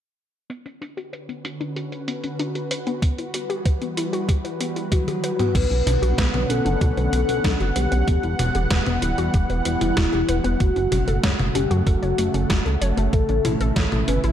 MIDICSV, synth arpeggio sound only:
0, 0, Header, 1, 2, 480
1, 0, Start_track
1, 0, Key_signature, 2, "minor"
1, 0, Tempo, 631579
1, 378, Time_signature, 4, 2, 24, 8
1, 10884, End_track
2, 0, Start_track
2, 0, Title_t, "Synth arpeggio sound"
2, 0, Program_c, 0, 84
2, 378, Note_on_c, 0, 59, 78
2, 439, Note_off_c, 0, 59, 0
2, 498, Note_on_c, 0, 61, 73
2, 559, Note_off_c, 0, 61, 0
2, 619, Note_on_c, 0, 62, 72
2, 719, Note_off_c, 0, 62, 0
2, 738, Note_on_c, 0, 66, 97
2, 799, Note_off_c, 0, 66, 0
2, 858, Note_on_c, 0, 71, 78
2, 972, Note_off_c, 0, 71, 0
2, 979, Note_on_c, 0, 59, 71
2, 1079, Note_off_c, 0, 59, 0
2, 1100, Note_on_c, 0, 61, 70
2, 1200, Note_off_c, 0, 61, 0
2, 1220, Note_on_c, 0, 62, 92
2, 1320, Note_off_c, 0, 62, 0
2, 1340, Note_on_c, 0, 66, 77
2, 1400, Note_off_c, 0, 66, 0
2, 1460, Note_on_c, 0, 71, 73
2, 1519, Note_off_c, 0, 71, 0
2, 1580, Note_on_c, 0, 59, 73
2, 1679, Note_off_c, 0, 59, 0
2, 1701, Note_on_c, 0, 61, 74
2, 1800, Note_off_c, 0, 61, 0
2, 1820, Note_on_c, 0, 62, 101
2, 1933, Note_off_c, 0, 62, 0
2, 1939, Note_on_c, 0, 66, 73
2, 2039, Note_off_c, 0, 66, 0
2, 2060, Note_on_c, 0, 71, 73
2, 2159, Note_off_c, 0, 71, 0
2, 2179, Note_on_c, 0, 59, 96
2, 2279, Note_off_c, 0, 59, 0
2, 2300, Note_on_c, 0, 59, 81
2, 2359, Note_off_c, 0, 59, 0
2, 2421, Note_on_c, 0, 64, 76
2, 2480, Note_off_c, 0, 64, 0
2, 2540, Note_on_c, 0, 66, 72
2, 2639, Note_off_c, 0, 66, 0
2, 2657, Note_on_c, 0, 67, 102
2, 2718, Note_off_c, 0, 67, 0
2, 2779, Note_on_c, 0, 71, 81
2, 2893, Note_off_c, 0, 71, 0
2, 2899, Note_on_c, 0, 59, 73
2, 2999, Note_off_c, 0, 59, 0
2, 3019, Note_on_c, 0, 64, 72
2, 3119, Note_off_c, 0, 64, 0
2, 3138, Note_on_c, 0, 66, 99
2, 3239, Note_off_c, 0, 66, 0
2, 3259, Note_on_c, 0, 67, 76
2, 3319, Note_off_c, 0, 67, 0
2, 3379, Note_on_c, 0, 71, 74
2, 3439, Note_off_c, 0, 71, 0
2, 3499, Note_on_c, 0, 59, 76
2, 3599, Note_off_c, 0, 59, 0
2, 3619, Note_on_c, 0, 64, 71
2, 3719, Note_off_c, 0, 64, 0
2, 3739, Note_on_c, 0, 66, 99
2, 3853, Note_off_c, 0, 66, 0
2, 3861, Note_on_c, 0, 67, 73
2, 3960, Note_off_c, 0, 67, 0
2, 3979, Note_on_c, 0, 71, 72
2, 4079, Note_off_c, 0, 71, 0
2, 4100, Note_on_c, 0, 59, 98
2, 4199, Note_off_c, 0, 59, 0
2, 4217, Note_on_c, 0, 59, 83
2, 4278, Note_off_c, 0, 59, 0
2, 4335, Note_on_c, 0, 61, 78
2, 4397, Note_off_c, 0, 61, 0
2, 4457, Note_on_c, 0, 62, 73
2, 4558, Note_off_c, 0, 62, 0
2, 4577, Note_on_c, 0, 66, 101
2, 4638, Note_off_c, 0, 66, 0
2, 4697, Note_on_c, 0, 71, 80
2, 4812, Note_off_c, 0, 71, 0
2, 4817, Note_on_c, 0, 59, 73
2, 4918, Note_off_c, 0, 59, 0
2, 4937, Note_on_c, 0, 61, 75
2, 5038, Note_off_c, 0, 61, 0
2, 5056, Note_on_c, 0, 62, 98
2, 5157, Note_off_c, 0, 62, 0
2, 5177, Note_on_c, 0, 66, 79
2, 5238, Note_off_c, 0, 66, 0
2, 5298, Note_on_c, 0, 71, 75
2, 5359, Note_off_c, 0, 71, 0
2, 5417, Note_on_c, 0, 59, 76
2, 5518, Note_off_c, 0, 59, 0
2, 5537, Note_on_c, 0, 61, 73
2, 5638, Note_off_c, 0, 61, 0
2, 5655, Note_on_c, 0, 62, 99
2, 5771, Note_off_c, 0, 62, 0
2, 5776, Note_on_c, 0, 66, 75
2, 5877, Note_off_c, 0, 66, 0
2, 5897, Note_on_c, 0, 71, 73
2, 5998, Note_off_c, 0, 71, 0
2, 6016, Note_on_c, 0, 59, 97
2, 6117, Note_off_c, 0, 59, 0
2, 6138, Note_on_c, 0, 59, 82
2, 6198, Note_off_c, 0, 59, 0
2, 6258, Note_on_c, 0, 64, 76
2, 6318, Note_off_c, 0, 64, 0
2, 6379, Note_on_c, 0, 66, 75
2, 6479, Note_off_c, 0, 66, 0
2, 6499, Note_on_c, 0, 67, 103
2, 6559, Note_off_c, 0, 67, 0
2, 6618, Note_on_c, 0, 71, 81
2, 6732, Note_off_c, 0, 71, 0
2, 6739, Note_on_c, 0, 59, 74
2, 6839, Note_off_c, 0, 59, 0
2, 6857, Note_on_c, 0, 64, 76
2, 6958, Note_off_c, 0, 64, 0
2, 6978, Note_on_c, 0, 66, 100
2, 7078, Note_off_c, 0, 66, 0
2, 7097, Note_on_c, 0, 67, 78
2, 7158, Note_off_c, 0, 67, 0
2, 7218, Note_on_c, 0, 71, 73
2, 7278, Note_off_c, 0, 71, 0
2, 7338, Note_on_c, 0, 59, 73
2, 7439, Note_off_c, 0, 59, 0
2, 7457, Note_on_c, 0, 64, 72
2, 7558, Note_off_c, 0, 64, 0
2, 7577, Note_on_c, 0, 66, 99
2, 7692, Note_off_c, 0, 66, 0
2, 7697, Note_on_c, 0, 67, 76
2, 7798, Note_off_c, 0, 67, 0
2, 7817, Note_on_c, 0, 71, 72
2, 7918, Note_off_c, 0, 71, 0
2, 7935, Note_on_c, 0, 59, 100
2, 8037, Note_off_c, 0, 59, 0
2, 8058, Note_on_c, 0, 57, 82
2, 8118, Note_off_c, 0, 57, 0
2, 8178, Note_on_c, 0, 61, 78
2, 8238, Note_off_c, 0, 61, 0
2, 8297, Note_on_c, 0, 66, 74
2, 8398, Note_off_c, 0, 66, 0
2, 8418, Note_on_c, 0, 69, 101
2, 8478, Note_off_c, 0, 69, 0
2, 8538, Note_on_c, 0, 73, 82
2, 8652, Note_off_c, 0, 73, 0
2, 8659, Note_on_c, 0, 57, 78
2, 8759, Note_off_c, 0, 57, 0
2, 8778, Note_on_c, 0, 61, 75
2, 8879, Note_off_c, 0, 61, 0
2, 8897, Note_on_c, 0, 66, 97
2, 8998, Note_off_c, 0, 66, 0
2, 9018, Note_on_c, 0, 69, 80
2, 9078, Note_off_c, 0, 69, 0
2, 9139, Note_on_c, 0, 73, 75
2, 9199, Note_off_c, 0, 73, 0
2, 9260, Note_on_c, 0, 57, 78
2, 9360, Note_off_c, 0, 57, 0
2, 9379, Note_on_c, 0, 61, 75
2, 9479, Note_off_c, 0, 61, 0
2, 9498, Note_on_c, 0, 66, 102
2, 9612, Note_off_c, 0, 66, 0
2, 9618, Note_on_c, 0, 69, 73
2, 9719, Note_off_c, 0, 69, 0
2, 9739, Note_on_c, 0, 73, 72
2, 9839, Note_off_c, 0, 73, 0
2, 9859, Note_on_c, 0, 57, 100
2, 9959, Note_off_c, 0, 57, 0
2, 9980, Note_on_c, 0, 57, 84
2, 10039, Note_off_c, 0, 57, 0
2, 10101, Note_on_c, 0, 61, 75
2, 10160, Note_off_c, 0, 61, 0
2, 10220, Note_on_c, 0, 64, 74
2, 10320, Note_off_c, 0, 64, 0
2, 10341, Note_on_c, 0, 69, 103
2, 10400, Note_off_c, 0, 69, 0
2, 10461, Note_on_c, 0, 73, 83
2, 10573, Note_off_c, 0, 73, 0
2, 10580, Note_on_c, 0, 57, 71
2, 10680, Note_off_c, 0, 57, 0
2, 10700, Note_on_c, 0, 61, 76
2, 10799, Note_off_c, 0, 61, 0
2, 10821, Note_on_c, 0, 64, 99
2, 10884, Note_off_c, 0, 64, 0
2, 10884, End_track
0, 0, End_of_file